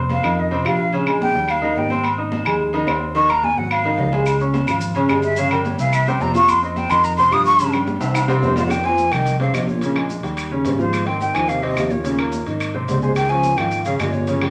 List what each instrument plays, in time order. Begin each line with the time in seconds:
Already playing: fingered electric bass F1, grand piano C4 C5 C6
0.10 flute F5, high conga, low timbale, low agogo
0.23 fingered electric bass F2, grand piano D#3 D#4 D#5, high conga, low conga, low agogo, claves
0.39 flute D#5, high conga, low conga
0.51 grand piano C3 C4 C5, low agogo
0.65 fingered electric bass A#1, grand piano F3 F4 F5, flute F5, low timbale, low agogo, claves
0.93 grand piano C#3 C#4 C#5, high conga, low agogo
1.06 grand piano G#3 G#4 G#5, high conga, low agogo, claves
1.21 flute G5, high conga, low timbale
1.34 fingered electric bass D#2, grand piano G3 G4 G5
1.48 flute F5, high conga, low agogo, claves
1.62 grand piano D#3 D#4 D#5, high conga, low agogo
1.76 fingered electric bass G#1, flute G5, high conga, low timbale
1.90 grand piano C4 C5 C6, high conga, low agogo
2.04 high conga, low agogo, claves
2.18 grand piano D#4 D#5 D#6, high conga
2.32 high conga, low timbale, low agogo
2.45 fingered electric bass D#2, grand piano G#3 G#4 G#5, high conga, low conga, low agogo, claves
2.61 high conga, low conga
2.73 grand piano D#3 D#4 D#5, high conga, low agogo
2.87 fingered electric bass D#2, grand piano C4 C5 C6, high conga, low timbale, low agogo, claves
3.02 high conga
3.15 grand piano D#3 D#4 D#5, flute C#6, high conga, low agogo
3.29 grand piano A#3 A#4 A#5, flute A#5, high conga, low agogo, claves
3.43 flute G#5, high conga, low timbale
3.56 fingered electric bass G#1, grand piano F#3 F#4 F#5, flute F#5
3.71 flute F5, low agogo, claves
3.84 grand piano D#3 D#4 D#5, low agogo
3.98 fingered electric bass C#2, low conga, low timbale
4.12 grand piano G#3 G#4 G#5, low conga, low agogo
4.26 high conga, low agogo, claves, maracas
4.40 grand piano C#4 C#5 C#6, high conga, maracas
4.54 high conga, low timbale, low agogo, maracas
4.67 fingered electric bass G#1, grand piano F3 F4 F5, high conga, low conga, low agogo, claves, maracas
4.81 high conga, low conga, maracas
4.95 grand piano C#3 C#4 C#5, high conga, low agogo, maracas
5.09 fingered electric bass G1, grand piano G#3 G#4 G#5, low timbale, low agogo, claves, maracas
5.22 flute E5, high conga, maracas
5.36 grand piano C#3 C#4 C#5, flute F5, high conga, low agogo, maracas
5.51 grand piano G3 G4 G5, flute A#4, high conga, low agogo, claves, maracas
5.65 flute C#5, high conga, low timbale, maracas
5.78 fingered electric bass C2, grand piano E3 E4 E5, flute F5, maracas
5.93 flute E5, high conga, low agogo, claves, maracas
6.06 grand piano C3 C4 C5, flute G5, high conga, low agogo, maracas
6.20 fingered electric bass F2, flute A#5, high conga, low timbale, maracas
6.34 grand piano F3 F4 F5, flute C#6, high conga, low agogo, maracas
6.48 flute C6, high conga, low agogo, claves, maracas
6.62 grand piano C4 C5 C6, flute D#5, high conga, maracas
6.76 flute G5, high conga, low timbale, low agogo, maracas
6.90 fingered electric bass F2, grand piano D#3 D#4 D#5, flute C6, high conga, low conga, low agogo, claves, maracas
7.03 flute A#5, high conga, maracas
7.17 grand piano C3 C4 C5, flute C6, low agogo, maracas
7.31 fingered electric bass G2, grand piano F3 F4 F5, flute D#6, high conga, low timbale, low agogo, claves, maracas
7.45 flute C#6, high conga, maracas
7.59 grand piano C#3 C#4 C#5, high conga, low agogo, maracas
7.72 grand piano G3 G4 G5, high conga, low agogo, claves, maracas
7.87 high conga, low timbale, maracas
8.01 fingered electric bass C2, grand piano E3 E4 E5, high timbale, maracas
8.14 high conga, high timbale, low agogo, claves, maracas
8.28 grand piano C3 C4 C5, low timbale, low agogo, maracas
8.42 fingered electric bass F2, trombone G2, flute C5, high conga, low timbale, maracas
8.56 trombone G#2, grand piano F3 F4 F5, flute C5, high conga, low timbale, low agogo, maracas
8.67 trombone C#3 D#3, flute F#5, high timbale, maracas
8.71 flute G5, high conga, claves
8.84 trombone F3, grand piano C4 C5 C6, flute G#5, high conga, high timbale
8.97 high conga, low timbale, maracas
9.12 fingered electric bass C2, grand piano D#3 D#4 D#5, trombone D#3, flute G5, high conga, low conga, high timbale, claves, maracas
9.26 high conga, low conga, high timbale, maracas
9.40 grand piano C3 C4 C5, trombone C#3, flute F5, high timbale
9.53 fingered electric bass A#1, trombone C3, grand piano F3 F4 F5, flute D#5, high conga, high timbale, low timbale, claves, maracas
9.68 trombone A#2, flute C#5, high conga, maracas
9.81 grand piano C#3 C#4 C#5, high conga, high timbale, maracas
9.95 grand piano G#3 G#4 G#5, high timbale, claves
10.09 high conga, low timbale, maracas
10.23 fingered electric bass D#2, grand piano G3 G4 G5, high timbale, maracas
10.37 high conga, high timbale, claves, maracas
10.51 grand piano C#3 C#4 C#5, high conga
10.65 fingered electric bass G#1, trombone G2, flute C5, high conga, high timbale, low timbale, maracas
10.79 trombone G#2, grand piano F3 F4 F5, flute C5, high conga, maracas
10.93 high conga, high timbale, claves, maracas
11.06 trombone D#3, grand piano C4 C5 C6, flute G5, high timbale
11.21 trombone D#3, flute G5, high conga, low timbale, maracas
11.34 fingered electric bass D#2, grand piano D#3 D#4 D#5, trombone F3, flute G#5, high conga, low conga, high timbale, claves, maracas
11.48 trombone C3, flute F5, high conga, high timbale, maracas
11.62 grand piano C3 C4 C5, trombone C3, flute D#5, high conga, high timbale
11.76 fingered electric bass D#2, grand piano F3 F4 F5, high conga, high timbale, low timbale, claves, maracas
11.90 trombone A#2, flute C#5, high conga, maracas
12.04 grand piano C#3 C#4 C#5, high conga, high timbale, maracas
12.18 grand piano A#3 A#4 A#5, high timbale, claves
12.32 high conga, low timbale, maracas
12.46 fingered electric bass G#1, grand piano D#3 D#4 D#5, high timbale, maracas
12.60 high conga, high timbale, claves, maracas
12.74 grand piano C3 C4 C5, high conga
12.88 fingered electric bass C#2, trombone G#2, flute C5, high conga, high timbale, low timbale, maracas
13.02 trombone G#2, grand piano G#3 G#4 G#5, flute C5, high conga, maracas
13.15 trombone D#3, flute G5, high conga, high timbale, claves, maracas
13.29 trombone F3, grand piano C#4 C#5 C#6, flute G#5, high conga, high timbale
13.43 high conga, low timbale, maracas
13.57 fingered electric bass G#1, trombone D#3, grand piano F3 F4 F5, flute G5, high conga, low conga, high timbale, claves, maracas
13.71 high conga, high timbale, maracas
13.84 trombone C#3, grand piano C#3 C#4 C#5, flute F5, high conga, high timbale, maracas
13.98 fingered electric bass G1, trombone A#2, grand piano G#3 G#4 G#5, flute D#5, high conga, high timbale, low timbale, claves, maracas
14.12 trombone A#2, flute C#5, high conga, maracas
14.27 grand piano C#3 C#4 C#5, high conga, high timbale, maracas
14.41 grand piano G3 G4 G5, high conga, high timbale, claves